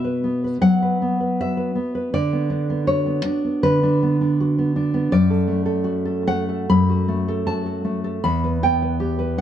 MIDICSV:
0, 0, Header, 1, 2, 480
1, 0, Start_track
1, 0, Key_signature, 2, "minor"
1, 0, Tempo, 755668
1, 1357, Time_signature, 4, 2, 24, 8
1, 2791, Tempo, 731707
1, 3268, Key_signature, 2, "major"
1, 3751, Tempo, 851064
1, 4231, Tempo, 763359
1, 5930, End_track
2, 0, Start_track
2, 0, Title_t, "Nylon-string guitar"
2, 0, Program_c, 0, 24
2, 0, Note_on_c, 0, 47, 71
2, 0, Note_on_c, 0, 59, 53
2, 0, Note_on_c, 0, 66, 53
2, 0, Note_on_c, 0, 76, 94
2, 28, Note_on_c, 0, 71, 57
2, 144, Note_off_c, 0, 59, 0
2, 151, Note_on_c, 0, 59, 55
2, 273, Note_off_c, 0, 71, 0
2, 280, Note_on_c, 0, 71, 50
2, 377, Note_off_c, 0, 47, 0
2, 382, Note_off_c, 0, 76, 0
2, 389, Note_on_c, 0, 54, 64
2, 391, Note_on_c, 0, 78, 120
2, 516, Note_off_c, 0, 71, 0
2, 523, Note_on_c, 0, 71, 59
2, 639, Note_off_c, 0, 59, 0
2, 645, Note_off_c, 0, 66, 0
2, 647, Note_on_c, 0, 59, 57
2, 759, Note_off_c, 0, 71, 0
2, 766, Note_on_c, 0, 71, 50
2, 859, Note_off_c, 0, 78, 0
2, 892, Note_on_c, 0, 66, 57
2, 894, Note_on_c, 0, 76, 102
2, 990, Note_off_c, 0, 71, 0
2, 998, Note_on_c, 0, 71, 65
2, 1106, Note_off_c, 0, 59, 0
2, 1114, Note_off_c, 0, 54, 0
2, 1114, Note_on_c, 0, 59, 53
2, 1230, Note_off_c, 0, 71, 0
2, 1238, Note_on_c, 0, 71, 63
2, 1342, Note_off_c, 0, 76, 0
2, 1354, Note_off_c, 0, 59, 0
2, 1357, Note_off_c, 0, 71, 0
2, 1357, Note_on_c, 0, 50, 86
2, 1358, Note_on_c, 0, 74, 120
2, 1362, Note_off_c, 0, 66, 0
2, 1479, Note_on_c, 0, 59, 59
2, 1587, Note_on_c, 0, 62, 57
2, 1706, Note_off_c, 0, 59, 0
2, 1713, Note_on_c, 0, 59, 60
2, 1813, Note_off_c, 0, 74, 0
2, 1821, Note_off_c, 0, 62, 0
2, 1824, Note_on_c, 0, 66, 69
2, 1825, Note_on_c, 0, 73, 104
2, 1937, Note_off_c, 0, 59, 0
2, 1945, Note_on_c, 0, 59, 56
2, 2062, Note_off_c, 0, 50, 0
2, 2065, Note_on_c, 0, 62, 61
2, 2181, Note_off_c, 0, 59, 0
2, 2188, Note_on_c, 0, 59, 49
2, 2287, Note_off_c, 0, 73, 0
2, 2306, Note_on_c, 0, 50, 77
2, 2307, Note_on_c, 0, 71, 117
2, 2426, Note_off_c, 0, 62, 0
2, 2434, Note_on_c, 0, 62, 62
2, 2547, Note_off_c, 0, 66, 0
2, 2549, Note_off_c, 0, 59, 0
2, 2556, Note_on_c, 0, 59, 71
2, 2667, Note_off_c, 0, 62, 0
2, 2675, Note_on_c, 0, 62, 55
2, 2798, Note_on_c, 0, 66, 62
2, 2908, Note_off_c, 0, 59, 0
2, 2916, Note_on_c, 0, 59, 61
2, 3003, Note_off_c, 0, 71, 0
2, 3023, Note_off_c, 0, 62, 0
2, 3031, Note_on_c, 0, 62, 66
2, 3141, Note_off_c, 0, 59, 0
2, 3149, Note_on_c, 0, 59, 70
2, 3240, Note_off_c, 0, 50, 0
2, 3267, Note_off_c, 0, 59, 0
2, 3267, Note_off_c, 0, 62, 0
2, 3268, Note_on_c, 0, 42, 92
2, 3268, Note_on_c, 0, 74, 127
2, 3271, Note_off_c, 0, 66, 0
2, 3388, Note_on_c, 0, 69, 61
2, 3501, Note_on_c, 0, 57, 66
2, 3612, Note_off_c, 0, 69, 0
2, 3619, Note_on_c, 0, 69, 68
2, 3740, Note_on_c, 0, 66, 71
2, 3855, Note_off_c, 0, 69, 0
2, 3862, Note_on_c, 0, 69, 65
2, 3964, Note_off_c, 0, 74, 0
2, 3979, Note_off_c, 0, 57, 0
2, 3985, Note_on_c, 0, 57, 75
2, 3987, Note_on_c, 0, 78, 116
2, 4099, Note_off_c, 0, 69, 0
2, 4106, Note_on_c, 0, 69, 61
2, 4208, Note_off_c, 0, 42, 0
2, 4220, Note_off_c, 0, 78, 0
2, 4223, Note_on_c, 0, 42, 82
2, 4224, Note_on_c, 0, 83, 127
2, 4340, Note_off_c, 0, 66, 0
2, 4348, Note_on_c, 0, 66, 68
2, 4459, Note_off_c, 0, 57, 0
2, 4467, Note_on_c, 0, 57, 69
2, 4585, Note_off_c, 0, 69, 0
2, 4592, Note_on_c, 0, 69, 66
2, 4690, Note_off_c, 0, 83, 0
2, 4701, Note_off_c, 0, 66, 0
2, 4707, Note_on_c, 0, 66, 67
2, 4708, Note_on_c, 0, 81, 102
2, 4821, Note_off_c, 0, 69, 0
2, 4828, Note_on_c, 0, 69, 60
2, 4938, Note_off_c, 0, 57, 0
2, 4945, Note_on_c, 0, 57, 59
2, 5062, Note_off_c, 0, 69, 0
2, 5069, Note_on_c, 0, 69, 62
2, 5159, Note_off_c, 0, 42, 0
2, 5166, Note_off_c, 0, 81, 0
2, 5186, Note_off_c, 0, 66, 0
2, 5187, Note_off_c, 0, 57, 0
2, 5189, Note_off_c, 0, 69, 0
2, 5192, Note_on_c, 0, 40, 87
2, 5192, Note_on_c, 0, 83, 127
2, 5320, Note_on_c, 0, 71, 63
2, 5420, Note_off_c, 0, 83, 0
2, 5438, Note_on_c, 0, 59, 68
2, 5440, Note_on_c, 0, 79, 116
2, 5553, Note_off_c, 0, 71, 0
2, 5560, Note_on_c, 0, 71, 62
2, 5671, Note_on_c, 0, 67, 68
2, 5783, Note_off_c, 0, 71, 0
2, 5790, Note_on_c, 0, 71, 65
2, 5895, Note_off_c, 0, 79, 0
2, 5903, Note_off_c, 0, 59, 0
2, 5910, Note_on_c, 0, 59, 64
2, 5930, Note_off_c, 0, 40, 0
2, 5930, Note_off_c, 0, 59, 0
2, 5930, Note_off_c, 0, 67, 0
2, 5930, Note_off_c, 0, 71, 0
2, 5930, End_track
0, 0, End_of_file